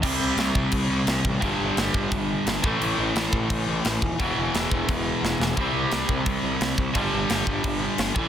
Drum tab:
CC |x-x-x-x-|x-x-x-x-|x-x-x-x-|x-x-x---|
SD |--o---o-|--o---o-|--o---o-|--o---oo|
BD |o--oo--o|o--oo--o|---oo--o|o--oo---|

CC |x-x-x-x-|x-x-x-x-|
SD |--o---o-|--o---o-|
BD |o--oo--o|o--oo--o|